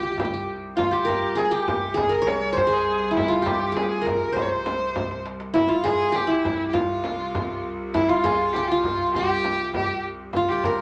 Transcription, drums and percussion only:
0.18 darbuka dum, frame drum
0.78 darbuka dum, frame drum
1.08 frame drum
1.38 darbuka tek, frame drum
1.68 frame drum, darbuka dum
1.97 frame drum, darbuka dum
2.27 darbuka tek, frame drum
2.57 frame drum, darbuka dum
3.17 frame drum, darbuka dum
3.46 frame drum, darbuka dum
3.76 darbuka tek, frame drum
4.06 darbuka dum, frame drum
4.21 darbuka ka
4.36 darbuka dum, frame drum
4.66 darbuka tek, frame drum
4.96 darbuka tek, frame drum
5.11 darbuka ka
5.26 darbuka tek
5.40 darbuka ka
5.55 frame drum, darbuka dum
5.85 frame drum, darbuka dum
6.15 darbuka tek, frame drum
6.45 frame drum, darbuka dum
6.74 frame drum, darbuka dum
7.04 darbuka tek, frame drum
7.35 darbuka dum, frame drum
7.94 darbuka dum, frame drum
8.25 darbuka dum, frame drum
8.54 darbuka tek, frame drum
8.83 darbuka dum, frame drum
9.14 darbuka dum, frame drum
9.44 darbuka tek, frame drum
9.74 darbuka dum, frame drum
10.33 frame drum, darbuka dum
10.63 darbuka dum, frame drum

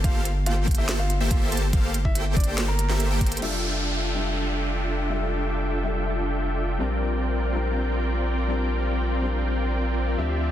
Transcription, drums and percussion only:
0.04 kick, closed hi-hat
0.25 closed hi-hat
0.46 closed hi-hat
0.68 kick, closed hi-hat
0.71 closed hi-hat
0.75 closed hi-hat
0.89 snare, closed hi-hat
1.10 closed hi-hat
1.31 kick, closed hi-hat
1.52 closed hi-hat
1.57 closed hi-hat
1.73 kick, closed hi-hat
1.94 closed hi-hat
2.05 kick
2.15 closed hi-hat
2.37 kick, closed hi-hat
2.40 closed hi-hat
2.44 closed hi-hat
2.58 snare, closed hi-hat
2.79 closed hi-hat
2.89 snare
3.00 closed hi-hat
3.21 kick, closed hi-hat
3.26 closed hi-hat
3.32 closed hi-hat
3.37 closed hi-hat
3.42 crash

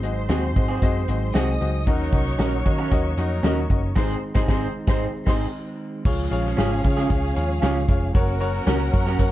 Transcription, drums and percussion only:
0.03 closed hi-hat
0.29 snare, closed hi-hat
0.56 kick, closed hi-hat
0.82 kick, closed hi-hat
1.08 closed hi-hat
1.35 snare, closed hi-hat
1.61 closed hi-hat
1.87 kick, closed hi-hat
2.13 kick, closed hi-hat
2.26 closed hi-hat
2.39 snare, closed hi-hat
2.65 kick, closed hi-hat
2.91 kick, closed hi-hat
3.17 closed hi-hat
3.44 snare, closed hi-hat
3.70 kick, closed hi-hat
3.96 kick, snare, crash
4.35 kick, snare
4.48 kick, snare
4.88 kick, snare
5.27 kick, snare, crash
6.05 kick, crash
6.31 closed hi-hat
6.45 snare
6.58 snare, closed hi-hat
6.84 kick, closed hi-hat
6.97 snare, closed hi-hat
7.10 kick, closed hi-hat
7.36 closed hi-hat
7.63 snare, closed hi-hat
7.75 closed hi-hat
7.89 kick, closed hi-hat
8.15 kick, closed hi-hat
8.41 closed hi-hat
8.67 snare, closed hi-hat
8.93 kick, closed hi-hat
9.06 snare, closed hi-hat
9.19 kick, closed hi-hat

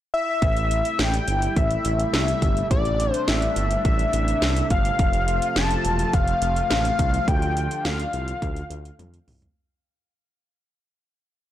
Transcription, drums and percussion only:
0.42 kick, closed hi-hat
0.57 closed hi-hat
0.71 closed hi-hat
0.85 closed hi-hat
0.99 snare, closed hi-hat
1.14 closed hi-hat
1.28 closed hi-hat
1.42 closed hi-hat
1.56 kick, closed hi-hat
1.71 closed hi-hat
1.85 closed hi-hat
2.00 closed hi-hat
2.14 snare, closed hi-hat
2.28 closed hi-hat
2.42 kick, closed hi-hat
2.57 closed hi-hat
2.71 kick, closed hi-hat
2.85 closed hi-hat
3.00 closed hi-hat
3.14 closed hi-hat
3.28 snare, closed hi-hat
3.42 closed hi-hat
3.56 closed hi-hat
3.71 closed hi-hat
3.85 kick, closed hi-hat
3.99 closed hi-hat
4.13 closed hi-hat
4.28 closed hi-hat
4.42 snare, closed hi-hat
4.56 closed hi-hat
4.70 kick, closed hi-hat
4.85 closed hi-hat
4.99 kick, closed hi-hat
5.13 closed hi-hat
5.28 closed hi-hat
5.42 closed hi-hat
5.56 snare, closed hi-hat
5.71 closed hi-hat
5.85 closed hi-hat
5.99 closed hi-hat
6.13 kick, closed hi-hat
6.28 closed hi-hat
6.42 closed hi-hat
6.56 closed hi-hat
6.71 snare, closed hi-hat
6.85 closed hi-hat
6.99 kick, closed hi-hat
7.14 closed hi-hat
7.28 kick, closed hi-hat
7.42 closed hi-hat
7.57 closed hi-hat
7.71 closed hi-hat
7.85 snare, closed hi-hat
8.00 closed hi-hat
8.13 closed hi-hat
8.28 closed hi-hat
8.42 kick, closed hi-hat
8.56 closed hi-hat
8.71 closed hi-hat
8.85 closed hi-hat
8.99 closed hi-hat, high tom
9.14 closed hi-hat
9.28 mid tom, open hi-hat
9.42 closed hi-hat, floor tom

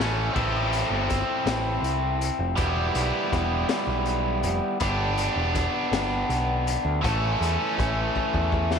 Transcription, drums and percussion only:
0.00 snare
0.36 kick, crash
0.73 closed hi-hat
1.10 kick, closed hi-hat
1.47 snare, closed hi-hat
1.84 closed hi-hat
2.21 closed hi-hat
2.57 kick, closed hi-hat
2.95 closed hi-hat
3.33 kick, closed hi-hat
3.69 snare, closed hi-hat
4.06 closed hi-hat
4.43 closed hi-hat
4.80 kick, closed hi-hat
5.18 closed hi-hat
5.55 kick, closed hi-hat
5.93 snare, closed hi-hat
6.30 closed hi-hat
6.67 closed hi-hat
7.04 kick, closed hi-hat
7.42 closed hi-hat
7.79 kick, closed hi-hat
8.16 kick
8.34 kick
8.52 kick
8.71 snare

